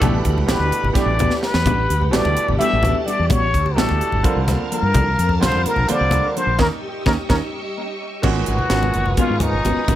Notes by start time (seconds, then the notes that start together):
Already playing: A4 F#5 B5
0.00 A1 B2 E3 G3 A3 B3 D4 F#4 G4, kick, closed hi-hat, muted conga, high conga
0.25 D2, kick, closed hi-hat
0.38 low conga
0.46 A1 B2 E3 G3 A3 B3 D4 F#4 G4 B4, snare, closed hi-hat
0.59 D2, low conga
0.70 muted fretless electric bass stroke, closed hi-hat
0.83 G1, high conga
0.93 B2 E3 G3 A3 B3 D4 F#4 G4 D5, kick, snare, closed hi-hat
1.06 A1
1.19 B3 D4 F#4, closed hi-hat, muted conga, low conga
1.30 snare, low conga
1.43 B4, snare
1.54 E2, snare
1.66 A1 G3 B3 D4 F#4, kick, closed hi-hat, muted conga, high conga
1.90 D2, closed hi-hat
2.02 low conga
2.11 A1 B2 E3 G3 A3 B3 D4 F#4 G4 D5, snare, closed hi-hat
2.25 D2, muted conga
2.37 muted fretless electric bass stroke, closed hi-hat
2.47 G1 A5, high conga, low conga
2.58 B2 E3 G3 A3 B3 D4 F#4 G4 E5, closed hi-hat
2.73 A1
2.83 B3 D4 F#4, closed hi-hat, muted conga, low conga
2.95 low conga
3.06 G3 B3 D4 F#4 D5, closed hi-hat
3.19 E2
3.30 A1 G3 B3 D4 F#4 C#5, kick, closed hi-hat, muted conga, high conga
3.54 D2, kick, closed hi-hat
3.66 low conga
3.76 A1 B2 E3 G3 A3 B3 D4 F#4 G4 A4, snare, closed hi-hat
3.89 D2, muted conga
4.01 muted fretless electric bass stroke, closed hi-hat
4.12 G1, high conga, low conga
4.23 D3 F3 G3 A#3 C4 D4 F4 A4 A#4 F5 A5, muted fretless electric bass stroke, kick, closed hi-hat
4.36 C2
4.48 A#3 D4 A4, snare, closed hi-hat, muted conga, low conga
4.60 low conga
4.71 F3 A#3 D4 A4 A#4, closed hi-hat
4.82 G2
4.94 C2 F3 A#3 D4 A4, kick, closed hi-hat, muted conga, high conga
5.18 F2, closed hi-hat
5.29 low conga
5.40 C2 D3 F3 G3 A#3 C4 D4 F4 A4 C5, snare, closed hi-hat
5.52 F2, muted conga
5.65 A#3 D4 A4 A#4, muted fretless electric bass stroke, closed hi-hat
5.76 A#1, high conga, low conga
5.88 D3 F3 G3 A#3 C4 D4 F4 A4 C5 D5, muted fretless electric bass stroke, closed hi-hat
6.01 C2
6.11 A#3 D4 A4, closed hi-hat, muted conga, low conga
6.22 low conga
6.36 F3 A#3 D4 A4 C5, closed hi-hat
6.47 A#1
6.59 D#2 A#3 C#4 D#4 G4 A#4 D#5 C#6 E6, kick, snare, muted conga
7.06 D#2 A#3 C#4 D#4 A#4, kick, snare, muted conga
7.29 D#2 A#3 C#4 D#4 A#4, kick, snare, muted conga
8.22 G#1 A#2 D#3 G#3 B3 C#4 F#4 A#4 B4 G#5 A#5 C#6, kick, crash, muted conga
8.46 G#1 F#4, closed hi-hat
8.59 high conga
8.70 G#1 A#2 D#3 G#3 B3 C#4 F#4 A#4, snare, closed hi-hat
8.83 muted conga
8.94 F#1, closed hi-hat, low conga
9.06 high conga
9.17 A#2 D#3 G#3 B3 C#4 F4 F#4 A#4, kick, closed hi-hat
9.30 G#2
9.40 D#4, closed hi-hat, muted conga, low conga
9.53 G#1, low conga
9.64 G#1 B3 C#4 F#4 A#4, closed hi-hat, high conga
9.88 G#1 B3 C#4 F#4 A#4, kick, closed hi-hat, muted conga